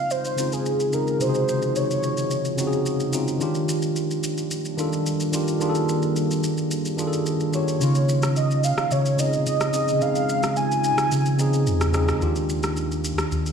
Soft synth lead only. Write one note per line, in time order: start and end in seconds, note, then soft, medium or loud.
0.00 0.13 F5 loud
0.11 0.54 C5 loud
0.53 0.95 G#4 loud
0.94 1.23 A#4 medium
1.21 1.78 C5 loud
1.76 2.86 C#5 medium
7.54 8.32 C#5 medium
8.37 8.66 D#5 medium
8.64 8.93 F5 medium
8.92 9.21 C#5 medium
9.19 9.46 D#5 medium
9.47 10.03 D#5 loud
10.02 10.56 F5 loud
10.57 11.90 G#5 loud